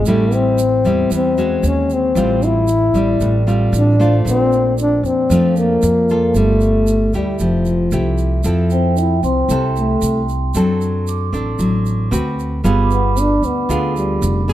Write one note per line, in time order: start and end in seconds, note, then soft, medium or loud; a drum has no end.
0.06 0.80 A1 medium
0.06 1.09 A2 medium
0.06 0.58 G3 medium
0.06 0.36 A3 medium
0.06 0.58 C4 medium
0.06 0.59 E4 medium
0.06 shaker medium
0.32 1.12 C4 loud
0.32 shaker soft
0.58 shaker medium
0.85 1.09 E2 medium
0.85 1.33 G3 medium
0.85 1.33 C4 medium
0.85 1.33 E4 medium
0.85 shaker soft
1.11 1.59 E2 medium
1.11 1.61 E3 medium
1.11 1.68 C4 medium
1.11 shaker medium
1.38 2.12 G#3 medium
1.38 2.12 C#4 medium
1.38 2.12 F#4 medium
1.38 shaker soft
1.63 2.12 D#2 medium
1.63 1.95 C#4 medium
1.63 shaker medium
1.90 2.46 C4 medium
1.90 shaker soft
2.15 2.90 A1 loud
2.15 3.18 A2 medium
2.15 2.68 G3 soft
2.15 2.68 C4 medium
2.15 2.68 F4 medium
2.15 shaker medium
2.42 3.48 E4 medium
2.42 shaker soft
2.68 shaker medium
2.94 3.18 A1 medium
2.94 3.42 G3 medium
2.94 3.43 C4 medium
2.94 4.48 D5 soft
2.94 shaker soft
3.20 3.69 A1 medium
3.20 4.23 A2 medium
3.20 shaker medium
3.47 3.95 G3 medium
3.47 3.95 C4 medium
3.47 3.95 F4 medium
3.47 shaker soft
3.73 4.21 A1 loud
3.73 4.24 D4 loud
3.73 shaker medium
3.99 5.00 A3 medium
3.99 5.00 D4 medium
3.99 5.00 F4 medium
3.99 4.48 C5 soft
3.99 shaker soft
4.25 5.00 A#1 medium
4.25 5.27 A#2 medium
4.25 shaker medium
4.29 4.76 C4 loud
4.52 shaker soft
4.78 5.08 D4 loud
4.78 shaker medium
5.03 5.28 F2 medium
5.03 5.57 C4 medium
5.03 shaker soft
5.30 5.79 F2 medium
5.30 6.33 F3 medium
5.30 5.83 A3 medium
5.30 5.83 D4 medium
5.30 5.83 F4 medium
5.30 shaker medium
5.57 6.38 A#3 medium
5.57 shaker soft
5.82 6.31 F2 loud
5.82 shaker medium
6.09 7.10 F4 medium
6.09 7.11 A4 medium
6.09 shaker soft
6.34 7.09 G1 medium
6.34 7.38 G3 medium
6.34 7.14 A3 medium
6.34 shaker medium
6.61 shaker soft
6.87 shaker medium
7.13 7.38 D2 medium
7.13 7.39 G3 medium
7.13 7.88 A3 medium
7.13 7.89 E4 medium
7.13 7.88 G4 medium
7.13 shaker soft
7.39 7.88 F1 medium
7.39 8.42 F3 medium
7.39 8.15 F3 medium
7.39 shaker medium
7.65 shaker soft
7.92 8.41 C2 loud
7.92 8.41 A3 medium
7.92 8.41 E4 soft
7.92 8.41 G4 medium
7.92 shaker medium
8.18 shaker soft
8.44 9.19 F2 loud
8.44 9.47 F3 medium
8.44 9.15 C4 medium
8.44 9.16 E4 medium
8.44 9.16 A4 medium
8.44 shaker medium
8.70 9.00 C4 medium
8.70 10.25 G5 medium
8.70 shaker soft
8.97 9.23 E4 medium
8.97 shaker medium
9.23 9.48 C2 medium
9.23 9.72 C4 medium
9.23 10.77 C6 medium
9.23 shaker soft
9.49 9.98 C2 medium
9.49 10.52 C3 medium
9.49 10.21 C4 medium
9.49 10.21 E4 medium
9.49 10.21 A4 medium
9.49 shaker medium
9.76 10.26 A3 medium
9.76 shaker soft
10.02 10.51 C2 loud
10.02 shaker medium
10.29 shaker soft
10.54 11.29 F#2 loud
10.54 11.57 F#3 medium
10.54 11.30 C4 soft
10.54 11.29 D4 medium
10.54 11.30 A4 medium
10.54 shaker medium
10.81 shaker soft
11.07 12.35 D6 soft
11.07 shaker medium
11.33 11.57 A1 medium
11.33 12.07 C4 soft
11.33 12.08 D4 soft
11.33 12.08 A4 medium
11.33 shaker soft
11.59 12.08 A1 medium
11.59 12.09 F#3 medium
11.59 shaker medium
11.86 shaker soft
12.11 12.60 D2 loud
12.11 12.60 C4 medium
12.11 12.60 F#4 medium
12.11 12.60 B4 medium
12.11 shaker medium
12.39 shaker soft
12.64 13.39 G1 medium
12.64 13.66 G3 medium
12.64 13.35 B3 medium
12.64 13.35 F4 medium
12.64 13.35 G#4 medium
12.64 14.19 B5 medium
12.64 shaker medium
12.83 14.34 D6 soft
12.91 13.21 B3 medium
12.91 shaker soft
13.17 13.47 D4 medium
13.17 shaker medium
13.42 13.67 D2 medium
13.42 13.96 B3 medium
13.42 shaker soft
13.69 14.18 D2 medium
13.69 14.53 D3 medium
13.69 14.44 B3 medium
13.69 14.44 F4 medium
13.69 14.44 G#4 medium
13.69 shaker medium
13.96 14.45 G3 medium
13.96 shaker soft
14.22 14.53 F1 loud
14.22 shaker medium
14.48 14.53 D4 medium
14.48 14.53 G#4 medium
14.48 shaker soft